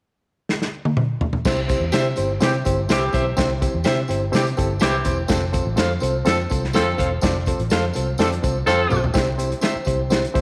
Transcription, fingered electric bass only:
1.46 1.74 C2 loud
1.80 1.90 E2 medium
1.94 2.13 C3 medium
2.18 2.37 G1 medium
2.42 2.61 C3 loud
2.67 2.85 G1 medium
2.89 3.09 C2 medium
3.14 3.33 B1 medium
3.38 3.66 C2 loud
3.74 3.84 E2 medium
3.87 4.05 C3 medium
4.09 4.29 G1 medium
4.33 4.53 C3 loud
4.59 4.78 G1 medium
4.82 5.01 C2 medium
5.05 5.25 E1 medium
5.30 5.58 F1 loud
5.65 5.75 A1 medium
5.77 5.97 F2 medium
6.02 6.21 C2 medium
6.26 6.45 F2 loud
6.52 6.77 C2 medium
6.75 6.94 F2 medium
6.99 7.18 E1 medium
7.24 7.52 F1 loud
7.59 7.69 A1 medium
7.72 7.90 F2 loud
7.97 8.15 C2 medium
8.19 8.38 F2 medium
8.44 8.62 C2 medium
8.67 8.86 F2 medium
8.91 9.10 B1 medium
9.15 9.53 C2 medium
9.76 muted fingered electric bass stroke soft
9.87 10.25 C2 medium
10.36 10.41 D2 medium

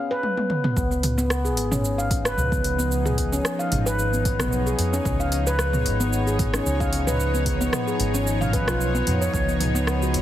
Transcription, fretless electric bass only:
0.77 1.57 C#2 medium
1.57 2.32 G#1 medium
2.38 3.39 C#2 loud
3.72 4.39 G#1 medium
4.40 4.73 B1 medium
4.79 4.98 F2 medium
5.06 5.87 C#2 medium
5.86 6.60 G#1 medium
6.66 7.67 C#2 loud
8.00 8.67 G#1 loud
8.68 9.01 B1 medium
9.07 9.27 F2 medium
9.34 10.16 C#2 medium
10.14 10.22 G#1 medium

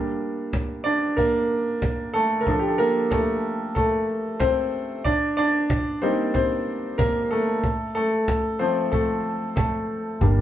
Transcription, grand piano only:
0.00 0.81 G3 soft
0.00 0.81 A#3 soft
0.00 0.81 D4 soft
0.84 1.16 D4 medium
0.84 1.18 D5 medium
1.17 2.11 A#3 medium
1.17 2.17 A#4 medium
2.14 2.41 A3 medium
2.14 2.40 A4 medium
2.41 2.51 A#4 medium
2.46 5.01 F3 soft
2.46 5.02 D4 soft
2.46 2.60 A4 medium
2.59 2.69 G4 medium
2.68 2.78 A4 medium
2.78 3.10 A#3 medium
2.78 3.12 A#4 medium
3.11 3.73 A3 medium
3.11 3.73 A4 medium
3.75 4.37 A3 medium
3.75 4.42 A4 medium
4.40 5.02 C4 medium
4.40 5.01 C5 medium
5.04 5.36 D4 medium
5.04 5.35 D5 medium
5.37 5.99 D4 medium
5.37 6.04 D5 medium
6.02 6.45 G3 soft
6.02 6.45 A#3 soft
6.02 6.11 C4 medium
6.02 6.46 D#4 medium
6.02 6.09 C5 medium
6.34 6.95 C4 medium
6.34 7.01 C5 medium
6.98 7.29 A#3 medium
6.98 7.32 A#4 medium
7.31 7.92 A3 medium
7.31 7.91 A4 medium
7.95 8.57 A3 medium
7.95 8.56 A4 medium
8.59 9.53 F3 soft
8.59 8.92 A3 soft
8.59 8.91 C4 medium
8.59 8.93 C5 medium
8.92 9.53 A3 soft
8.92 9.54 A4 medium
9.56 10.02 A3 soft
9.56 10.01 A4 medium
10.21 10.41 G3 soft
10.21 10.41 A#3 soft
10.21 10.41 D4 soft

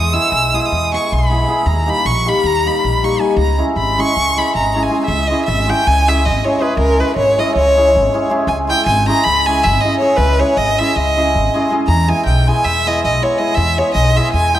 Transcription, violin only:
0.00 0.15 D#6 loud
0.14 0.56 E6 loud
0.55 0.61 D#6 medium
0.60 0.68 E6 medium
0.66 0.93 D#6 medium
0.94 1.15 C#6 medium
1.13 1.68 B5 medium
1.67 1.91 A#5 medium
1.89 2.07 B5 loud
2.06 2.30 C#6 medium
2.28 2.48 B5 medium
2.46 2.68 A#5 loud
2.67 3.06 B5 medium
3.04 3.21 C#6 medium
3.20 3.37 G#5 medium
3.39 3.58 A#5 medium
3.77 4.02 B5 medium
4.00 4.40 C#6 loud
4.38 4.55 B5 medium
4.56 4.84 A#5 medium
4.83 4.99 G#5 medium
5.05 5.29 E5 medium
5.28 5.45 D#5 loud
5.46 5.71 E5 medium
5.70 5.88 G5 loud
5.87 6.10 G#5 loud
6.09 6.27 E5 loud
6.25 6.46 D#5 medium
6.45 6.64 C#5 medium
6.62 6.77 B4 medium
6.78 7.01 A#4 loud
7.00 7.16 B4 medium
7.16 7.40 C#5 loud
7.39 7.54 D#5 loud
7.55 8.26 C#5 loud
8.48 8.58 G#5 medium
8.70 8.85 G5 loud
8.86 9.06 G#5 loud
9.08 9.25 A#5 loud
9.24 9.48 B5 loud
9.46 9.65 G#5 loud
9.63 9.82 E5 loud
9.81 9.98 D#5 loud
9.99 10.18 C#5 loud
10.16 10.41 B4 loud
10.39 10.59 C#5 medium
10.57 10.80 D#5 loud
10.79 10.98 E5 loud
10.96 11.71 D#5 loud
11.87 12.10 A#5 medium
12.09 12.25 G#5 loud
12.26 12.49 G5 medium
12.48 12.66 G#5 loud
12.65 12.89 E5 loud
12.87 13.04 D#5 loud
13.04 13.24 D#5 medium
13.23 13.40 C#5 medium
13.38 13.56 D#5 medium
13.55 13.80 E5 loud
13.78 13.93 C#5 loud
13.94 14.18 D#5 loud
14.17 14.32 E5 medium
14.32 14.57 G#5 loud
14.55 14.59 G5 loud

